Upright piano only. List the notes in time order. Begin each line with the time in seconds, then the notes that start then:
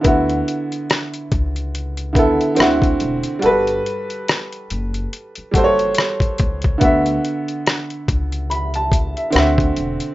0.01 D3 B3
0.05 E4 F#4
2.13 D3 B3
2.17 E4 A4
2.55 D3 C4
2.59 E4 F#4
3.39 G3 F#4
3.43 A4 B4
5.51 G3 F#4
5.56 A4 C5
5.64 C#5
6.78 D3 B3
6.82 F#4 E5
8.50 B5
8.76 A5
9.17 E5
9.30 D3 C4
9.35 F#4 E5